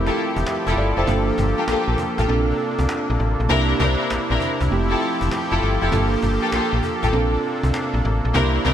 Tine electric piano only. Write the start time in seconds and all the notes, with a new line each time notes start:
Already playing: A3 C4 E4 G4
0.48 E5
0.78 D5
0.98 C5
1.06 A#3 D4 F4 A4
2.27 C4 D4 F4 A4
3.49 A#3 D4 E4 G4
4.70 A3 C4 E4 G4
5.91 A#3 D4 F4 A4
7.13 C4 D4 F4 A4
8.34 A#3 D4 E4 G4